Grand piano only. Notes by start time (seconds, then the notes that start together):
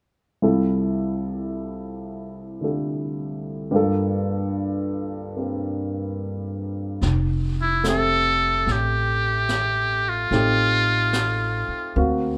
0.42 C2 C3 G3 E4 F4 A4
2.61 D3 A3 F4 G4 A4
3.71 G2 G3 A#3 F4
3.76 A4
5.37 A#3 C4 G4 A#4
7.84 A3 C4 E5
7.88 G4
10.32 A3 C4 D#4 G4
11.96 A#3 C4 F#4 F5